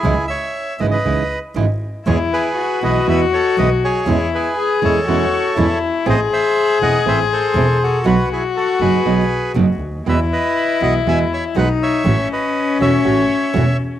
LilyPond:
<<
  \new Staff \with { instrumentName = "Bandoneon" } { \time 4/4 \key e \major \tempo 4 = 120 <e' gis'>8 <cis'' e''>4 <b' dis''>16 <b' dis''>4 r4 r16 | <gis' cis''>8 <gis' b'>4 <b' dis''>8 <b' e''>8 <a' cis''>8 <b' dis''>8 <gis' cis''>8~ | <gis' cis''>8 <gis' b'>4 <a' cis''>2 r8 | <c'' dis''>8 <c'' e''>4 <dis'' fis''>8 <c'' e''>8 <a' c''>4 <fis' a'>8 |
<fis' b'>8 <e' gis'>8 <fis' a'>8 <gis' b'>4. r4 | <b' e''>8 <b' dis''>4 <dis'' fis''>8 <e'' gis''>8 <cis'' e''>8 <b' fis''>8 <cis'' e''>8~ | <cis'' e''>8 <b' dis''>4 <cis'' e''>2 r8 | }
  \new Staff \with { instrumentName = "Cello" } { \time 4/4 \key e \major r1 | e'4 fis'2. | e'4 gis'4 fis'4 e'4 | gis'1 |
fis'2.~ fis'8 r8 | e'2. dis'4 | cis'1 | }
  \new Staff \with { instrumentName = "Nylon-string guitar" } { \time 4/4 \key e \major <cis e gis dis' e'>8 r4 <cis e gis dis' e'>8 <cis e gis dis' e'>8 r8 <cis e gis dis' e'>8 r8 | <b, e gis b e'>8 r4 <b, e gis b e'>8 <b, e gis b e'>8 r8 <b, e gis b e'>8 r8 | <b, e gis cis' e'>8 r4 <b, e gis cis' e'>8 <b, e gis cis' e'>8 r8 <b, e gis cis' e'>8 r8 | <e a c' e'>8 r4 <e a c' e'>8 <e a c' e'>8 r8 <e a c' e'>8 r8 |
<b, fis b dis' fis'>8 r4 <b, fis b dis' fis'>8 <b, fis b dis' fis'>8 r8 <b, fis b dis' fis'>8 r8 | <b, e gis b fis'>8 r4 <b, e gis b fis'>8 <b, e gis b fis'>8 r8 <b, e gis b fis'>8 r8 | <e a cis' fis'>8 r4 <e a cis' fis'>8 <e a cis' fis'>8 r8 <e a cis' fis'>8 r8 | }
  \new Staff \with { instrumentName = "Double bass" } { \clef bass \time 4/4 \key e \major cis,8 r4 gis,,8 cis,8 r8 gis,,8 r8 | e,8 r4 b,,8 e,8 r8 b,,8 r8 | e,8 r4 e,8 e,8 r8 e,8 r8 | a,,8 r4 e,,8 a,,8 r8 e,,8 r8 |
b,,8 r4 fis,,8 b,,8 r8 fis,,8 d,8 | e,8 r4 b,,8 e,8 r8 b,,8 r8 | a,,8 r4 e,,8 a,,8 r8 e,,8 r8 | }
>>